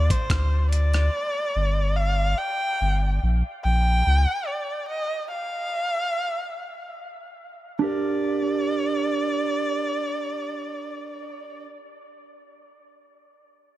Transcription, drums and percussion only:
0.10 kick, closed hi-hat
0.30 kick, cross-stick, closed hi-hat
0.73 closed hi-hat
0.94 cross-stick, closed hi-hat

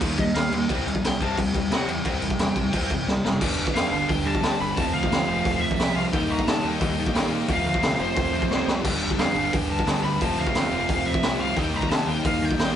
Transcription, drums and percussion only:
0.01 kick, crash
0.18 kick, crash
0.35 snare, crash
0.52 crash
0.69 kick, crash
0.88 crash
0.95 kick
1.04 snare, crash
1.21 kick, crash
1.38 kick, crash
1.55 kick, crash
1.72 snare, crash
1.89 crash
2.05 kick, crash
2.22 crash
2.30 kick
2.39 snare, crash
2.56 kick, crash
2.73 kick, crash
2.90 kick, crash
3.08 snare
3.25 snare
3.41 kick, crash
3.67 kick
3.76 snare, open hi-hat
4.09 kick, open hi-hat
4.35 kick
4.43 snare, open hi-hat
4.77 kick, open hi-hat
5.03 kick
5.12 snare, open hi-hat
5.45 kick, open hi-hat
5.71 kick
5.79 snare, open hi-hat
6.13 kick, open hi-hat
6.39 kick
6.47 snare, open hi-hat
6.81 kick, open hi-hat
7.06 kick
7.15 snare, open hi-hat
7.49 kick, open hi-hat
7.74 kick
7.83 snare, open hi-hat
8.16 kick, open hi-hat
8.42 kick
8.51 snare
8.68 snare
8.85 kick, crash
9.10 kick
9.19 snare, open hi-hat
9.53 kick, open hi-hat
9.79 kick
9.87 snare, open hi-hat
10.21 kick, open hi-hat
10.47 kick
10.55 snare, open hi-hat
10.89 kick, open hi-hat
11.14 kick
11.23 snare, open hi-hat
11.57 kick, open hi-hat
11.82 kick
11.91 snare, open hi-hat
12.25 kick, open hi-hat
12.51 kick
12.59 snare, open hi-hat

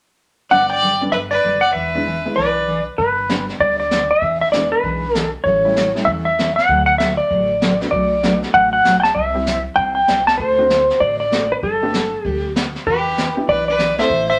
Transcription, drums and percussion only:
2.99 brush sweep, kick
3.29 snare, hi-hat pedal
3.49 snare
3.60 brush sweep, kick
3.91 snare, hi-hat pedal
4.22 brush sweep, kick
4.53 snare, hi-hat pedal
4.83 brush sweep, kick
5.15 snare, hi-hat pedal
5.45 brush sweep, kick
5.76 snare, hi-hat pedal
5.96 snare
6.07 brush sweep, kick
6.39 snare, hi-hat pedal
6.58 snare
6.69 brush sweep, kick
7.00 snare, hi-hat pedal
7.31 brush sweep, kick
7.62 snare, hi-hat pedal
7.81 snare
7.92 brush sweep, kick
8.23 snare, hi-hat pedal
8.43 snare
8.54 brush sweep, kick
8.85 snare, hi-hat pedal
9.04 snare
9.16 brush sweep, kick
9.47 snare, hi-hat pedal
9.77 brush sweep, kick
10.08 snare, hi-hat pedal
10.27 snare
10.39 brush sweep, kick
10.70 snare, hi-hat pedal
10.90 snare
11.01 brush sweep, kick
11.32 snare, hi-hat pedal
11.63 brush sweep, kick
11.94 snare, hi-hat pedal
12.25 brush sweep, kick
12.56 snare, hi-hat pedal
12.76 snare
12.87 brush sweep, kick
13.18 snare, hi-hat pedal
13.48 brush sweep, kick
13.79 snare, hi-hat pedal
13.98 snare
14.10 brush sweep, kick

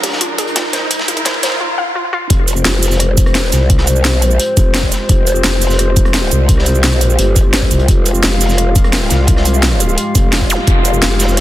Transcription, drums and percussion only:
0.03 kick, snare, closed hi-hat, open hi-hat
0.13 snare
0.21 kick, closed hi-hat
0.38 kick, closed hi-hat
0.47 closed hi-hat
0.56 kick, snare, closed hi-hat
0.73 kick, snare, closed hi-hat
0.91 kick, closed hi-hat
0.99 kick, snare
1.08 kick, closed hi-hat
1.17 kick, closed hi-hat
1.25 kick, snare, closed hi-hat
1.34 kick
1.43 kick, snare, closed hi-hat
1.52 kick
2.30 kick, closed hi-hat
2.48 closed hi-hat, cabasa
2.56 cabasa
2.65 snare, closed hi-hat
2.83 snare, closed hi-hat, open hi-hat, cabasa
2.91 snare, cabasa
3.00 cross-stick, closed hi-hat
3.17 kick, closed hi-hat, cabasa
3.26 cross-stick, closed hi-hat
3.35 snare, closed hi-hat
3.52 snare, closed hi-hat, cabasa
3.70 kick, closed hi-hat
3.78 cross-stick, snare
3.87 closed hi-hat, cabasa
3.96 cabasa
4.04 snare, closed hi-hat
4.13 cross-stick
4.22 closed hi-hat, cabasa
4.31 cabasa
4.40 closed hi-hat
4.57 kick, closed hi-hat, cabasa
4.74 snare, closed hi-hat
4.83 kick
4.92 snare, closed hi-hat, cabasa
5.09 kick, closed hi-hat
5.27 closed hi-hat, cabasa
5.36 cabasa
5.44 snare, closed hi-hat
5.61 snare, closed hi-hat, open hi-hat, cabasa
5.70 snare, cabasa
5.79 cross-stick, closed hi-hat
5.96 kick, closed hi-hat, cabasa
6.05 cross-stick, closed hi-hat
6.14 snare, closed hi-hat
6.31 closed hi-hat, cabasa
6.49 kick, closed hi-hat
6.58 cross-stick, snare
6.65 closed hi-hat, cabasa
6.75 cabasa
6.84 snare, closed hi-hat
6.92 cross-stick, closed hi-hat
7.01 closed hi-hat, cabasa
7.10 cabasa
7.19 closed hi-hat
7.36 kick, closed hi-hat, cabasa
7.53 snare, closed hi-hat
7.62 kick
7.71 closed hi-hat, cabasa
7.79 closed hi-hat
7.88 kick, closed hi-hat
8.06 closed hi-hat, cabasa
8.15 cabasa
8.23 snare, closed hi-hat
8.40 snare, closed hi-hat, open hi-hat, cabasa
8.49 snare, cabasa
8.58 cross-stick, closed hi-hat
8.76 kick, closed hi-hat, cabasa
8.84 cross-stick, closed hi-hat
8.93 snare, closed hi-hat
9.10 snare, closed hi-hat, cabasa
9.27 kick, closed hi-hat
9.37 cross-stick, snare
9.45 closed hi-hat, cabasa
9.54 cabasa
9.62 snare, closed hi-hat
9.72 cross-stick
9.80 closed hi-hat, cabasa
9.89 cabasa
9.97 closed hi-hat
10.15 kick, closed hi-hat, cabasa
10.32 snare, closed hi-hat
10.41 kick
10.50 snare, closed hi-hat, cabasa
10.67 kick, closed hi-hat
10.85 closed hi-hat, cabasa
10.94 cabasa
11.02 snare, closed hi-hat
11.19 snare, closed hi-hat, cabasa
11.29 snare, cabasa
11.37 cross-stick, closed hi-hat

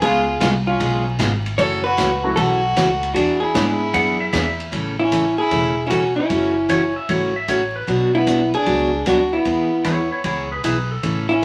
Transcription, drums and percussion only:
0.02 kick, ride
0.41 kick, snare, hi-hat pedal, ride
0.80 kick, ride
1.19 kick, snare, hi-hat pedal, ride
1.46 ride
1.59 kick, ride
1.98 kick, snare, hi-hat pedal, ride
2.37 kick, ride
2.76 kick, snare, hi-hat pedal, ride
3.03 ride
3.16 kick, ride
3.55 kick, snare, hi-hat pedal, ride
3.94 kick, ride
4.33 kick, snare, hi-hat pedal, ride
4.60 ride
4.73 kick, ride
5.12 kick, hi-hat pedal, ride
5.51 kick, ride
5.90 kick, hi-hat pedal, ride
6.30 kick, ride
6.69 kick, hi-hat pedal, ride
7.09 kick, ride
7.48 kick, hi-hat pedal, ride
7.88 kick, ride
8.27 kick, hi-hat pedal, ride
8.54 ride
8.66 kick, ride
9.06 kick, hi-hat pedal, ride
9.45 kick, ride
9.84 kick, hi-hat pedal, ride
10.24 kick, ride
10.64 kick, hi-hat pedal, ride
11.03 kick, ride

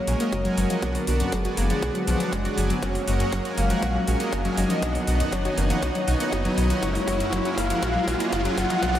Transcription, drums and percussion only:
0.07 open hi-hat
0.20 closed hi-hat
0.33 kick, closed hi-hat
0.45 closed hi-hat
0.58 open hi-hat
0.70 closed hi-hat
0.82 kick, closed hi-hat
0.95 open hi-hat
1.07 open hi-hat
1.20 closed hi-hat
1.32 kick, closed hi-hat
1.45 closed hi-hat
1.57 open hi-hat
1.70 closed hi-hat
1.82 kick, closed hi-hat
1.95 closed hi-hat
2.07 open hi-hat
2.20 closed hi-hat
2.33 kick, closed hi-hat
2.45 closed hi-hat
2.58 open hi-hat
2.70 closed hi-hat
2.83 kick, closed hi-hat
2.95 open hi-hat
3.08 open hi-hat
3.20 closed hi-hat
3.32 kick, closed hi-hat
3.45 closed hi-hat
3.58 open hi-hat
3.70 closed hi-hat
3.83 kick, closed hi-hat
4.08 open hi-hat
4.20 closed hi-hat
4.33 kick, closed hi-hat
4.45 closed hi-hat
4.57 open hi-hat
4.70 closed hi-hat
4.82 kick, closed hi-hat
4.95 open hi-hat
5.07 open hi-hat
5.20 closed hi-hat
5.33 kick, closed hi-hat
5.45 closed hi-hat
5.58 open hi-hat
5.70 closed hi-hat
5.83 kick, closed hi-hat
5.95 closed hi-hat
6.08 open hi-hat
6.20 closed hi-hat
6.33 kick, closed hi-hat
6.45 closed hi-hat
6.58 open hi-hat
6.70 closed hi-hat
6.83 kick, closed hi-hat
6.95 open hi-hat
7.08 kick, open hi-hat
7.20 closed hi-hat
7.33 kick, closed hi-hat
7.45 closed hi-hat
7.58 kick, open hi-hat
7.70 closed hi-hat
7.83 kick, closed hi-hat
8.08 kick, open hi-hat
8.20 closed hi-hat
8.33 kick, closed hi-hat
8.45 closed hi-hat
8.58 kick, open hi-hat
8.70 closed hi-hat
8.83 kick, closed hi-hat
8.95 kick, open hi-hat

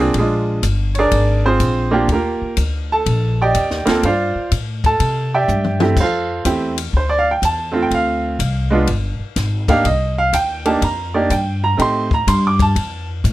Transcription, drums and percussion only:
0.14 kick, ride
0.63 kick, hi-hat pedal, ride
0.95 ride
1.11 kick, ride
1.60 kick, hi-hat pedal, ride
2.08 kick, ride
2.57 kick, hi-hat pedal, ride
3.06 kick, ride
3.55 kick, hi-hat pedal, ride
3.71 snare
3.87 snare, ride
4.03 kick, ride
4.52 kick, hi-hat pedal, ride
4.84 kick, ride
5.00 kick, ride
5.48 hi-hat pedal, high tom
5.64 mid tom
5.80 mid tom
5.97 kick, crash
6.45 kick, hi-hat pedal, ride
6.78 ride
6.94 kick
7.42 kick, hi-hat pedal, ride
7.91 kick, ride
8.39 kick, hi-hat pedal, ride
8.87 kick, ride
9.36 kick, snare, hi-hat pedal, ride
9.68 kick, ride
9.85 kick, ride
10.33 kick, hi-hat pedal, ride
10.65 ride
10.82 kick, ride
11.30 kick, hi-hat pedal, ride
11.79 kick, ride
12.11 kick
12.27 kick, hi-hat pedal, ride
12.59 kick, ride
12.76 kick, ride
13.24 kick, hi-hat pedal, ride

